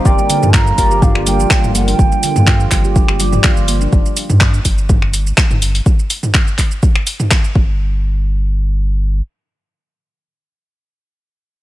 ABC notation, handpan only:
X:1
M:4/4
L:1/16
Q:"Swing 16ths" 1/4=124
K:Gm
V:1 name="Handpan"
z G, D, F, F z G, G D G G, F, F z B, D | z G, D, F, F z G, G D G G, F, F z B, D | z16 | z16 |
z16 | z16 |]